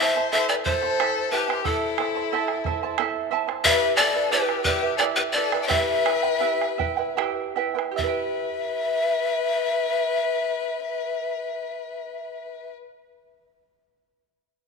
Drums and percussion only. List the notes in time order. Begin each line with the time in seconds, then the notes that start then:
0.49 bombo rim
0.66 bombo low
1.00 bombo rim
1.50 bombo rim
1.65 bombo low
1.98 bombo rim
2.17 bombo rim
2.48 bombo rim
2.65 bombo low
2.98 bombo rim
3.49 bombo rim
3.65 bombo low
3.97 bombo rim
4.49 bombo rim
4.65 bombo low
5.00 bombo rim
5.52 bombo rim
5.70 bombo low
6.06 bombo rim
6.25 bombo rim
6.61 bombo rim
6.79 bombo low
7.00 bombo rim
7.18 bombo rim
7.58 bombo rim
7.79 bombo rim
7.99 bombo low